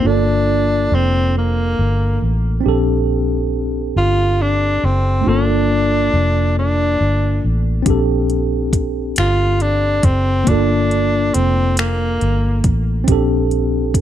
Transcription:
0.00 tine electric piano A#3 D4
0.05 fingered electric bass G1, tenor saxophone D4, tine electric piano F4 A4
0.92 fingered electric bass F1, tenor saxophone C4
1.38 tenor saxophone A#3
1.79 fingered electric bass G1
2.22 fingered electric bass A1
2.61 tine electric piano C4 D4
2.66 fingered electric bass A#1, tine electric piano G4 A4
3.96 fingered electric bass G1, tenor saxophone F4
4.42 tenor saxophone D4
4.84 fingered electric bass F#1, tenor saxophone C4
5.21 tine electric piano A3 D4
5.26 fingered electric bass G1, tine electric piano A#3 F4 A4, tenor saxophone D4
6.14 fingered electric bass F1
6.59 tenor saxophone D4
7.01 fingered electric bass G1
7.44 fingered electric bass A1
7.82 tine electric piano C4 D4, kick, closed hi-hat
7.87 fingered electric bass A#1, tine electric piano G4 A4
8.30 closed hi-hat
8.73 kick, closed hi-hat
9.16 fingered electric bass G1, tenor saxophone F4, finger snap, closed hi-hat
9.60 tenor saxophone D4, closed hi-hat
10.03 fingered electric bass F#1, tenor saxophone C4, kick, closed hi-hat
10.44 fingered electric bass G1, tine electric piano A#3 D4, kick, closed hi-hat
10.49 tenor saxophone D4, tine electric piano F4 A4
10.91 closed hi-hat
11.34 fingered electric bass F1, tenor saxophone C4, closed hi-hat
11.77 tenor saxophone A#3, finger snap, closed hi-hat
12.21 fingered electric bass G1, closed hi-hat
12.64 fingered electric bass A1, kick, closed hi-hat
13.04 tine electric piano C4 C#4, kick, closed hi-hat
13.09 fingered electric bass A#1, tine electric piano G4 A4
13.13 tine electric piano D4
13.51 closed hi-hat
13.94 kick, closed hi-hat

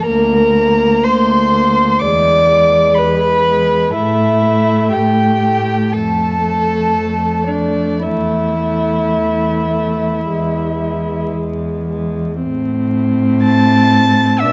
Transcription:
0.06 cello D2, viola A#3, violin A#4 A#5
0.56 viola A#3
1.03 cello D2, violin C5 C6
1.52 viola A#3
1.99 cello E2, violin D5 D6
2.03 viola G#3
2.51 viola G#3
2.94 cello E2, violin B4 B5
3.48 viola G#3
3.95 cello A2, viola A3, violin E4 E5
4.46 viola A3
4.92 cello A2, violin G4 G5
5.43 viola A3
5.92 cello F2, viola A3, violin A4 A5
6.44 viola A3
6.96 cello F2
7.47 viola A3, violin D4 D5
8.02 viola A3, violin E4 E5
8.06 cello E2
8.62 viola A3
9.17 cello E2
9.71 viola A3
10.26 cello E2, viola G#3
10.79 viola G#3
11.35 cello E2
11.88 viola G#3
12.43 cello A2, viola C4
13.43 violin A5 A6
14.40 viola D4, violin E5 E6
14.44 cello B2

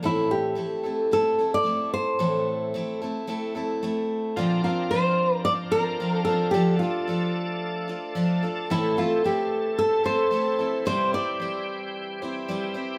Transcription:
0.03 steel-string acoustic guitar A2 E3 A3 C4 E4 A4, nylon-string guitar E4
0.31 nylon-string guitar G4
0.55 steel-string acoustic guitar A3 C4 E4 A4
0.83 steel-string acoustic guitar A3 C4 E4 A4
1.11 steel-string acoustic guitar A3 C4 E4 A4, nylon-string guitar A4
1.39 steel-string acoustic guitar A3 C4 E4 A4
1.54 nylon-string guitar D5
1.64 steel-string acoustic guitar A3 C4 E4 A4
1.94 nylon-string guitar C5
2.19 steel-string acoustic guitar A2 E3 A3 C4 E4 A4
2.74 steel-string acoustic guitar A3 C4 E4 A4
3.02 steel-string acoustic guitar A3 C4 E4 A4
3.27 steel-string acoustic guitar A3 C4 E4 A4
3.55 steel-string acoustic guitar A3 C4 E4 A4
3.83 steel-string acoustic guitar A3 C4 E4 A4
4.36 steel-string acoustic guitar A#2 D3 F3 C4 D4 A#4, tonewheel organ F3 C4 D4 A#4, nylon-string guitar F4
4.64 steel-string acoustic guitar F3 C4 D4 A#4, nylon-string guitar F4
4.91 steel-string acoustic guitar F3 C4 D4 A#4, nylon-string guitar C5
5.45 nylon-string guitar D5
5.72 steel-string acoustic guitar F3 C4 D4 A#4, nylon-string guitar A#4
6.00 steel-string acoustic guitar F3 C4 D4 A#4
6.13 nylon-string guitar A4
6.25 steel-string acoustic guitar C4 D4 A#4, nylon-string guitar A4
6.29 steel-string acoustic guitar F3
6.51 steel-string acoustic guitar D3 F3 D4 F4, tonewheel organ A3 A4, nylon-string guitar G4
6.55 steel-string acoustic guitar A4
6.79 steel-string acoustic guitar D4 F4 A4, nylon-string guitar F4
7.08 steel-string acoustic guitar F3 D4 F4 A4
7.88 steel-string acoustic guitar D4 F4 A4
8.15 steel-string acoustic guitar F3 D4 F4 A4
8.43 steel-string acoustic guitar D4 F4 A4
8.70 steel-string acoustic guitar A2 E3 A3 C4 E4 A4, tonewheel organ E3 C4, nylon-string guitar E4
8.97 steel-string acoustic guitar A3 C4 E4 A4, nylon-string guitar F4
9.24 steel-string acoustic guitar A3 C4 E4 A4, nylon-string guitar G4
9.79 nylon-string guitar A4
10.04 steel-string acoustic guitar A3 C4 E4 A4, nylon-string guitar C5
10.31 steel-string acoustic guitar A3 C4 E4 A4
10.59 steel-string acoustic guitar A3 C4 E4 A4
10.85 steel-string acoustic guitar C3 G3 C4 E4 C5, tonewheel organ G3 G4, nylon-string guitar C5
11.13 steel-string acoustic guitar C4 E4 C5, nylon-string guitar D5
11.40 steel-string acoustic guitar G3 C4 E4 C5
12.22 steel-string acoustic guitar C4 E4 C5
12.48 steel-string acoustic guitar G3 C4 E4 C5
12.74 steel-string acoustic guitar C4 E4 C5

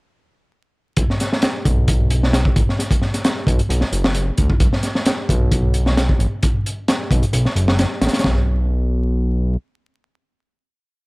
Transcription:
0.97 analog synth bass B1, kick, closed hi-hat
1.10 snare
1.20 snare, closed hi-hat
1.33 snare
1.42 snare, closed hi-hat
1.65 analog synth bass B1, kick, closed hi-hat
1.88 kick, closed hi-hat
2.10 closed hi-hat
2.23 snare
2.33 snare, closed hi-hat
2.45 kick
2.56 analog synth bass A1, kick, closed hi-hat
2.69 snare
2.79 snare, closed hi-hat
2.91 kick, closed hi-hat
3.02 snare
3.14 snare, closed hi-hat
3.24 snare, closed hi-hat
3.47 analog synth bass B1, kick, closed hi-hat
3.59 closed hi-hat
3.69 analog synth bass B1, closed hi-hat
3.81 snare
3.92 analog synth bass F#1, closed hi-hat
4.04 snare
4.14 closed hi-hat
4.37 analog synth bass D2, kick, closed hi-hat
4.50 kick
4.60 analog synth bass B1, kick, closed hi-hat
4.73 snare
4.83 snare, closed hi-hat
4.95 snare
5.05 snare, closed hi-hat
5.29 analog synth bass B1, kick, closed hi-hat
5.52 kick, closed hi-hat
5.74 closed hi-hat
5.86 snare
5.97 snare, closed hi-hat
6.09 kick
6.19 analog synth bass A1, closed hi-hat
6.43 kick, closed hi-hat
6.66 closed hi-hat
6.88 snare, closed hi-hat
7.11 analog synth bass B1, kick, closed hi-hat
7.23 closed hi-hat
7.33 analog synth bass B1, closed hi-hat
7.45 snare
7.56 analog synth bass F#1, closed hi-hat
7.68 snare
7.79 analog synth bass F#1, snare, closed hi-hat
8.01 analog synth bass A1, snare, closed hi-hat
8.07 snare, closed hi-hat
8.13 snare, closed hi-hat
8.19 snare, closed hi-hat
8.24 analog synth bass B1, kick, snare

